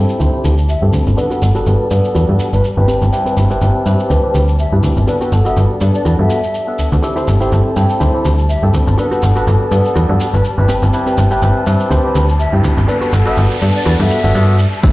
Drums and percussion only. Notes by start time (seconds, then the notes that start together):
0.09 cabasa
0.20 cabasa
0.45 cabasa
0.58 cabasa
0.69 cabasa
0.93 cabasa
1.07 cabasa
1.18 cabasa
1.31 cabasa
1.42 cabasa
1.56 cabasa
1.67 cabasa
1.91 cabasa
2.04 cabasa
2.15 cabasa
2.40 cabasa
2.53 cabasa
2.64 cabasa
2.89 cabasa
3.02 cabasa
3.13 cabasa
3.26 cabasa
3.37 cabasa
3.51 cabasa
3.62 cabasa
3.86 cabasa
4.00 cabasa
4.11 cabasa
4.35 cabasa
4.48 cabasa
4.59 cabasa
4.83 cabasa
4.97 cabasa
5.08 cabasa
5.21 cabasa
5.32 cabasa
5.46 cabasa
5.57 cabasa
5.81 cabasa
5.95 cabasa
6.06 cabasa
6.30 cabasa
6.43 cabasa
6.54 cabasa
6.79 cabasa
6.92 cabasa
7.03 cabasa
7.17 cabasa
7.28 cabasa
7.41 cabasa
7.52 cabasa
7.77 cabasa
7.90 cabasa
8.01 cabasa
8.25 cabasa
8.38 cabasa
8.49 cabasa
8.74 cabasa
8.87 cabasa
8.98 cabasa
9.12 cabasa
9.23 cabasa
9.36 cabasa
9.47 cabasa
9.72 cabasa
9.85 cabasa
9.96 cabasa
10.20 cabasa
10.34 cabasa
10.45 cabasa
10.69 cabasa
10.82 cabasa
10.93 cabasa
11.07 cabasa
11.18 cabasa
11.31 cabasa
11.42 cabasa
11.67 cabasa
11.80 cabasa
11.91 cabasa
12.15 cabasa
12.29 cabasa
12.40 cabasa
12.64 cabasa
12.78 cabasa
12.88 cabasa
13.02 cabasa
13.13 cabasa
13.26 cabasa
13.37 cabasa
13.50 cabasa
13.62 cabasa
13.75 cabasa
13.86 cabasa
14.10 cabasa
14.24 cabasa
14.35 cabasa
14.59 cabasa
14.73 cabasa
14.83 kick, closed hi-hat, crash, cabasa